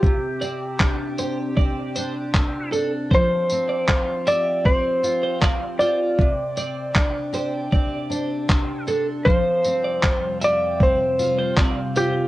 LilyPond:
<<
  \new Staff \with { instrumentName = "Clean electric guitar" } { \time 4/4 \key f \lydian \tempo 4 = 78 r8 d''16 r8. c''16 r16 d''8 c''16 r8. a'16 r16 | c''8 r16 d''16 r8 e''8 d''16 r8 c''16 d''16 r16 c''16 r16 | r8 d''16 r8. c''16 r16 d''8 c''16 r8. a'16 r16 | c''8 r16 d''16 r8 e''8 d''16 r8 c''16 d''16 r16 c''16 r16 | }
  \new Staff \with { instrumentName = "Electric slide guitar" } { \time 4/4 \key f \lydian g'2.~ g'8 r8 | c''4. d''8 c''4 r8 d''8~ | d''2.~ d''8 r8 | c''4. d''8 c''4 r8 g'8 | }
  \new Staff \with { instrumentName = "Steel-string acoustic guitar" } { \time 4/4 \key f \lydian c8 c'8 d'8 g'8 c'8 d'8 c'8 d'8 | f8 c'8 f'8 g'8 c'8 f'8 c'8 f'8 | c8 c'8 d'8 g'8 c'8 d'8 c'8 d'8 | f8 c'8 f'8 g'8 c'8 f'8 c'8 f'8 | }
  \new Staff \with { instrumentName = "Ambient pad" } { \clef bass \time 4/4 \key f \lydian r1 | r1 | r1 | <f, c g>1 | }
  \new DrumStaff \with { instrumentName = "Drums" } \drummode { \time 4/4 bd8 tamb8 <hc bd>8 tamb8 bd8 tamb8 <hc bd>8 tamb8 | bd8 tamb8 <hc bd>8 tamb8 bd8 tamb8 <hc bd>8 tamb8 | bd8 tamb8 <hc bd>8 tamb8 bd8 tamb8 <hc bd>8 tamb8 | bd8 tamb8 <hc bd>8 tamb8 bd8 tamb8 <hc bd>8 tamb8 | }
>>